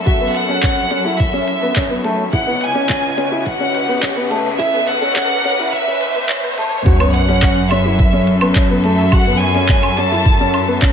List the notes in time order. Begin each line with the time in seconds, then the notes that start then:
Already playing: F#2 F#3 C#4 A4 E5, riser
0.06 F#4 E5, kick
0.21 B3
0.35 F#5, closed hi-hat
0.48 C#4
0.63 C#4, kick, clap
0.90 C#4, closed hi-hat
1.05 E4
1.20 E5, kick
1.33 C#4
1.48 closed hi-hat
1.62 B3
1.76 C#4, kick, clap
1.90 B3
2.04 A3, closed hi-hat
2.33 C#2 C#3 E4 F#5, kick
2.47 B3
2.61 G#5, closed hi-hat
2.75 C#4
2.89 C#4, kick, clap
2.94 B4
3.17 C#4, closed hi-hat
3.31 E4
3.40 G#5
3.46 F#5, kick
3.60 C#4
3.75 closed hi-hat
3.88 B3
4.02 C#4, kick, clap
4.16 B3
4.30 A3, closed hi-hat
4.58 E4 E5, kick
4.73 B3
4.87 F#5, closed hi-hat
5.01 C#4
5.15 C#4, kick, clap
5.45 C#4, closed hi-hat
5.59 E4
5.73 E5, kick
5.87 C#4
6.01 closed hi-hat
6.15 B3
6.29 C#4, kick, clap
6.43 B3
6.58 A3, closed hi-hat
6.86 F#2 F#3 F#4 C#5, kick, closed hi-hat, sub drop
7.00 B3, low woodblock
7.14 F#5, closed hi-hat
7.29 C#4, closed hi-hat
7.42 C#4, kick, clap, closed hi-hat
7.71 C#4 E5, closed hi-hat, low woodblock
7.85 E4 A4
7.99 kick, closed hi-hat
8.05 E5
8.13 C#4
8.27 closed hi-hat
8.41 B3, low woodblock
8.55 C#4, kick, clap, closed hi-hat
8.70 B3
8.84 A3 E5, closed hi-hat
9.12 F#4 F#5, kick, closed hi-hat, low woodblock
9.27 B3
9.40 G#5, closed hi-hat
9.55 C#4, closed hi-hat
9.69 C#4, kick, clap, closed hi-hat
9.83 low woodblock
9.97 C#4 A5, closed hi-hat
10.11 E4
10.26 kick, closed hi-hat
10.40 C#4
10.54 closed hi-hat, low woodblock
10.68 B3
10.82 C#4, kick, clap, closed hi-hat